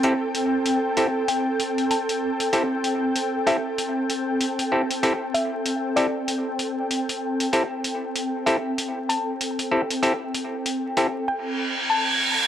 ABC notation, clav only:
X:1
M:4/4
L:1/8
Q:"Swing 16ths" 1/4=96
K:Am
V:1 name="Clav"
[CEGA] z2 [CEGA] z4 | [CEGA] z2 [CEGA] z3 [CEGA] | [CEGA] z2 [CEGA] z4 | [CEGA] z2 [CEGA] z3 [CEGA] |
[CEGA] z2 [CEGA] z4 |]